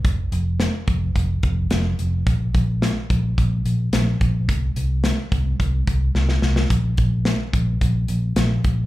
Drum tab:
HH |x-x-x-x-x-x-x-x-|x-x-x-x-x-x-x-x-|x-x-x-x-x-x-----|x-x-x-x-x-x-x-x-|
SD |----o-------o---|----o-------o---|----o-------oooo|----o-------o---|
BD |o-----o-o-o-----|o-o---o-o-----o-|o-----o-o-o-----|o-o---o-o-----o-|